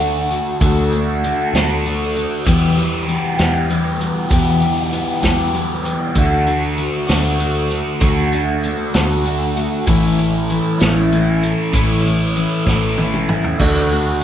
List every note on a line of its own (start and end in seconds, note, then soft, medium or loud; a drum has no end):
0.00 0.39 D2 medium
0.00 0.30 D3 medium
0.00 0.59 D3 medium
0.00 0.59 A3 medium
0.00 0.30 A3 medium
0.00 0.59 D4 medium
0.00 0.30 D4 medium
0.00 0.58 F#4 medium
0.00 0.29 F#4 medium
0.30 0.61 A3 soft
0.30 0.61 D4 medium
0.30 0.61 F#4 soft
0.30 closed hi-hat medium
0.61 1.32 D2 medium
0.61 0.92 D3 medium
0.61 0.92 A3 medium
0.61 0.93 D4 medium
0.61 0.93 F#4 medium
0.61 kick loud
0.61 closed hi-hat medium
0.93 1.24 A3 soft
0.93 1.24 D4 medium
0.93 1.24 F#4 medium
0.93 closed hi-hat medium
1.24 1.54 D3 medium
1.24 1.55 A3 medium
1.24 1.55 D4 medium
1.24 1.54 F#4 medium
1.24 closed hi-hat medium
1.53 2.25 D2 medium
1.53 1.84 D3 medium
1.53 1.84 A3 medium
1.53 1.85 D4 medium
1.53 1.85 F#4 medium
1.53 snare loud
1.53 closed hi-hat medium
1.85 2.16 D3 medium
1.85 2.16 A3 medium
1.85 2.15 D4 medium
1.85 2.14 F#4 medium
1.85 closed hi-hat medium
2.15 2.47 A3 soft
2.15 2.47 D4 soft
2.15 2.46 F#4 soft
2.15 closed hi-hat medium
2.46 2.77 E2 medium
2.46 3.18 E2 medium
2.46 2.77 B2 medium
2.46 2.77 E3 medium
2.46 2.77 G3 medium
2.46 2.76 B3 medium
2.46 2.75 G4 medium
2.46 kick loud
2.46 closed hi-hat medium
2.76 3.05 E3 medium
2.76 3.06 G3 medium
2.76 3.07 B3 medium
2.76 3.07 G4 medium
2.76 closed hi-hat medium
3.06 3.38 E3 medium
3.06 3.37 G3 medium
3.06 3.37 B3 medium
3.06 3.36 G4 medium
3.06 closed hi-hat medium
3.37 4.10 E2 medium
3.37 3.70 E2 medium
3.37 3.70 B2 medium
3.37 3.68 E3 medium
3.37 3.69 G3 medium
3.37 3.69 B3 medium
3.37 3.69 G4 medium
3.37 snare medium
3.37 closed hi-hat medium
3.70 4.00 E3 medium
3.70 4.01 G3 medium
3.70 4.00 B3 medium
3.70 3.99 G4 medium
3.70 closed hi-hat medium
4.00 4.31 E3 soft
4.00 4.32 G3 soft
4.00 4.31 B3 soft
4.00 4.31 G4 medium
4.00 closed hi-hat medium
4.31 5.02 E2 medium
4.31 4.62 E2 medium
4.31 4.63 B2 medium
4.31 4.62 E3 medium
4.31 4.62 G3 medium
4.31 4.61 B3 medium
4.31 4.60 G4 medium
4.31 kick loud
4.31 closed hi-hat medium
4.61 4.90 E3 soft
4.61 4.91 G3 medium
4.61 4.92 B3 medium
4.61 4.92 G4 medium
4.61 closed hi-hat medium
4.91 5.21 E3 medium
4.91 5.21 G3 medium
4.91 5.21 B3 medium
4.91 5.21 G4 medium
4.91 closed hi-hat medium
5.22 5.95 E2 medium
5.22 5.55 E2 medium
5.22 5.54 B2 medium
5.22 5.51 E3 medium
5.22 5.52 G3 medium
5.22 5.53 B3 medium
5.22 5.53 G4 medium
5.22 kick medium
5.22 snare loud
5.22 closed hi-hat medium
5.52 5.84 E3 medium
5.52 5.84 G3 medium
5.52 5.82 B3 medium
5.52 5.81 G4 medium
5.52 closed hi-hat medium
5.83 6.15 E3 soft
5.83 6.16 G3 soft
5.83 6.16 B3 soft
5.83 6.15 G4 medium
5.83 closed hi-hat medium
6.15 6.87 D2 medium
6.15 6.47 D3 medium
6.15 6.47 A3 medium
6.15 6.46 D4 medium
6.15 6.46 F#4 medium
6.15 kick loud
6.15 closed hi-hat medium
6.47 6.77 A3 soft
6.47 6.77 D4 medium
6.47 6.78 F#4 medium
6.47 closed hi-hat medium
6.77 7.09 D3 medium
6.77 7.08 A3 medium
6.77 7.08 D4 medium
6.77 7.07 F#4 medium
6.77 closed hi-hat medium
7.09 7.81 D2 medium
7.09 7.38 D3 medium
7.09 7.39 A3 medium
7.09 7.39 D4 medium
7.09 7.40 F#4 medium
7.09 snare medium
7.09 closed hi-hat medium
7.39 7.71 D3 medium
7.39 7.71 A3 medium
7.39 7.71 D4 medium
7.39 7.69 F#4 medium
7.39 closed hi-hat medium
7.70 8.00 A3 soft
7.70 8.01 D4 soft
7.70 8.02 F#4 medium
7.70 closed hi-hat medium
8.01 8.73 D2 medium
8.01 8.33 D3 medium
8.01 8.33 A3 medium
8.01 8.33 D4 medium
8.01 8.32 F#4 medium
8.01 kick loud
8.01 closed hi-hat medium
8.33 8.64 A3 soft
8.33 8.65 D4 medium
8.33 8.64 F#4 medium
8.33 closed hi-hat medium
8.63 8.94 D3 medium
8.63 8.94 A3 medium
8.63 8.93 D4 medium
8.63 8.93 F#4 medium
8.63 closed hi-hat medium
8.94 9.66 D2 medium
8.94 9.24 D3 medium
8.94 9.25 A3 medium
8.94 9.26 D4 medium
8.94 9.25 F#4 medium
8.94 snare loud
8.94 closed hi-hat medium
9.25 9.57 D3 medium
9.25 9.56 A3 medium
9.25 9.56 D4 medium
9.25 9.55 F#4 medium
9.25 closed hi-hat soft
9.56 9.86 A3 soft
9.56 9.87 D4 soft
9.56 9.87 F#4 medium
9.56 closed hi-hat medium
9.86 10.59 A1 medium
9.86 10.18 A2 medium
9.86 10.18 E3 medium
9.86 10.18 A3 medium
9.86 10.18 C#4 medium
9.86 10.17 E4 medium
9.86 kick loud
9.86 closed hi-hat medium
10.18 10.49 A3 medium
10.18 10.50 C#4 medium
10.18 10.49 E4 medium
10.18 closed hi-hat medium
10.50 10.80 E3 medium
10.50 10.79 A3 medium
10.50 10.79 C#4 medium
10.50 10.79 E4 medium
10.50 closed hi-hat medium
10.80 11.53 A1 medium
10.80 11.12 A2 medium
10.80 11.10 E3 medium
10.80 11.11 A3 medium
10.80 11.11 C#4 medium
10.80 11.11 E4 medium
10.80 snare loud
10.80 closed hi-hat medium
11.11 11.43 E3 medium
11.11 11.43 A3 medium
11.11 11.42 C#4 medium
11.11 11.40 E4 medium
11.11 closed hi-hat medium
11.42 11.73 A3 soft
11.42 11.74 C#4 soft
11.42 11.73 E4 medium
11.42 closed hi-hat medium
11.73 12.45 A1 medium
11.73 12.05 A2 medium
11.73 12.05 E3 medium
11.73 12.05 A3 medium
11.73 12.04 C#4 medium
11.73 12.03 E4 loud
11.73 kick loud
11.73 closed hi-hat medium
12.04 12.35 A3 soft
12.04 12.36 C#4 medium
12.04 12.36 E4 medium
12.04 closed hi-hat medium
12.36 12.66 E3 medium
12.36 12.66 A3 medium
12.36 12.66 C#4 medium
12.36 12.65 E4 medium
12.36 closed hi-hat medium
12.66 13.38 A1 medium
12.66 12.98 A2 medium
12.66 12.96 E3 medium
12.66 12.98 A3 medium
12.66 12.98 C#4 medium
12.66 12.98 E4 medium
12.66 kick medium
12.66 snare medium
12.97 13.29 E3 medium
12.97 13.29 A3 medium
12.97 13.30 C#4 medium
12.97 13.28 E4 medium
12.97 high tom medium
13.13 mid tom medium
13.29 13.60 A3 soft
13.29 13.61 C#4 soft
13.29 13.60 E4 medium
13.29 mid tom medium
13.44 floor tom medium
13.59 14.24 D2 loud
13.59 13.91 D3 medium
13.59 13.91 A3 medium
13.59 13.92 D4 loud
13.59 14.24 F#4 medium
13.59 13.91 F#4 medium
13.59 14.24 A4 medium
13.59 14.24 D5 medium
13.59 kick loud
13.59 crash medium
13.90 14.22 A3 soft
13.90 14.23 D4 medium
13.90 14.22 F#4 medium
13.90 closed hi-hat medium